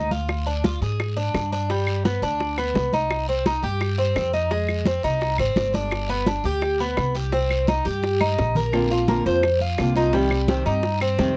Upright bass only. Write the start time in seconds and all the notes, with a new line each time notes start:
Already playing: D2
0.81 G#2
1.34 G2
2.22 D2
2.74 C2
3.63 G2
4.16 F2
5.04 C2
5.39 G#1
5.56 G1
6.44 D2
6.97 C2
7.86 G2
8.38 A#1
9.26 F2
9.79 C2
10.66 G2
11.19 F2